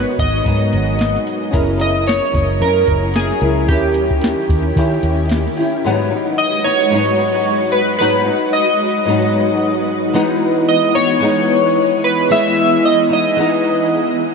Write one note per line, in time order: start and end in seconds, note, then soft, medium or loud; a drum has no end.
0.00 0.45 F#3 soft
0.00 1.50 G#3 medium
0.00 0.46 B3 soft
0.00 1.48 B3 medium
0.00 1.50 B3 medium
0.00 0.46 D#4 soft
0.00 1.49 D#4 medium
0.00 1.50 F#4 medium
0.00 1.51 A#4 medium
0.19 0.40 G#1 medium
0.19 1.23 D#5 medium
0.19 kick medium
0.19 closed hi-hat medium
0.44 1.52 G#2 medium
0.44 0.75 G#2 medium
0.44 1.52 F#3 medium
0.44 1.53 B3 medium
0.44 kick medium
0.44 closed hi-hat medium
0.48 1.53 D#4 medium
0.73 1.16 G#1 medium
0.73 closed hi-hat medium
0.99 snare loud
0.99 closed hi-hat medium
1.16 snare soft
1.27 closed hi-hat medium
1.51 2.19 F#1 medium
1.51 1.80 F#3 medium
1.51 3.67 F#3 medium
1.51 3.64 C#4 medium
1.51 1.80 C#4 medium
1.51 3.65 E4 medium
1.51 3.67 E4 medium
1.51 1.79 E4 medium
1.51 3.65 G#4 medium
1.51 3.67 A#4 medium
1.51 1.78 A#4 loud
1.51 kick loud
1.51 closed hi-hat medium
1.55 3.66 A#4 medium
1.79 2.61 C#4 soft
1.79 2.62 E4 soft
1.79 2.63 A#4 soft
1.79 2.09 D#5 loud
1.79 closed hi-hat medium
2.07 2.63 C#5 medium
2.07 snare loud
2.07 closed hi-hat medium
2.34 2.62 F#1 loud
2.34 kick medium
2.34 closed hi-hat medium
2.61 2.82 F#2 medium
2.61 3.42 F#3 medium
2.61 3.44 C#4 medium
2.61 3.42 E4 medium
2.61 3.17 A#4 loud
2.61 3.41 A#4 medium
2.61 closed hi-hat medium
2.87 3.31 F#1 medium
2.87 kick medium
2.87 closed hi-hat medium
3.14 3.71 G#4 medium
3.14 snare loud
3.14 closed hi-hat medium
3.31 snare soft
3.41 3.69 C#2 medium
3.41 3.68 C#4 soft
3.41 3.69 E4 soft
3.41 3.69 A#4 soft
3.41 closed hi-hat medium
3.67 4.34 D#2 loud
3.67 4.76 D#3 medium
3.67 5.83 D#3 medium
3.67 5.79 C#4 medium
3.67 4.76 C#4 medium
3.67 5.83 C#4 medium
3.67 5.80 E4 medium
3.67 5.26 G4 medium
3.67 5.81 G4 medium
3.67 5.83 G4 medium
3.67 kick loud
3.67 closed hi-hat medium
3.71 5.83 E4 medium
3.71 4.77 E4 medium
3.71 4.78 G4 medium
3.71 5.82 A#4 medium
3.94 closed hi-hat medium
4.11 kick medium
4.21 snare loud
4.21 closed hi-hat medium
4.49 4.71 D#2 medium
4.49 kick medium
4.49 closed hi-hat medium
4.76 4.98 D#3 loud
4.76 5.62 D#3 medium
4.76 5.58 C#4 medium
4.76 5.57 E4 medium
4.76 5.56 G4 medium
4.76 kick medium
4.76 closed hi-hat medium
5.03 5.46 D#2 medium
5.03 closed hi-hat medium
5.29 snare loud
5.29 closed hi-hat medium
5.47 snare soft
5.57 5.86 C#4 soft
5.57 5.85 E4 soft
5.57 5.84 G4 soft
5.57 open hi-hat soft
5.85 6.11 G#2 medium
5.85 6.12 F#3 medium
5.85 10.10 G#3 medium
5.85 6.11 B3 loud
5.85 6.10 D#4 loud
5.85 10.10 F#4 medium
5.85 10.11 B4 medium
6.11 6.66 F#3 soft
6.11 6.66 B3 medium
6.11 6.64 D#4 medium
6.38 6.66 D#5 loud
6.64 6.91 F#3 soft
6.64 6.92 B3 medium
6.64 6.92 D#4 soft
6.64 7.75 C#5 loud
6.90 7.98 G#2 medium
6.90 7.99 F#3 medium
6.90 8.01 B3 medium
6.94 8.01 D#4 medium
7.72 7.97 B4 medium
7.99 8.26 G#2 medium
7.99 8.27 F#3 medium
7.99 8.27 B3 loud
7.99 8.25 D#4 medium
7.99 8.54 B4 medium
8.26 9.05 F#3 soft
8.26 9.08 B3 medium
8.26 9.09 D#4 medium
8.53 9.83 D#5 medium
9.05 10.13 G#2 medium
9.05 10.14 F#3 medium
9.05 10.15 B3 medium
9.10 10.15 D#4 medium
10.13 14.35 E3 medium
10.13 10.94 E3 loud
10.13 10.97 G#3 loud
10.13 14.35 B3 medium
10.13 10.96 B3 loud
10.13 10.94 D#4 loud
10.13 14.35 G#4 medium
10.69 10.96 D#5 medium
10.94 11.21 G#3 soft
10.94 11.22 B3 soft
10.94 11.21 D#4 medium
10.94 12.06 C#5 loud
11.20 12.28 E3 medium
11.20 12.30 G#3 medium
11.20 12.31 B3 medium
11.24 12.33 D#4 medium
12.04 12.31 B4 medium
12.30 13.10 E3 loud
12.30 13.12 G#3 medium
12.30 13.11 B3 medium
12.30 12.86 E5 loud
12.85 12.97 D#5 loud
13.09 13.37 G#3 soft
13.09 13.38 B3 soft
13.09 13.37 D#4 soft
13.09 14.15 D#5 loud
13.36 14.35 E3 medium
13.36 14.35 G#3 medium
13.36 14.35 B3 medium
13.40 14.35 D#4 medium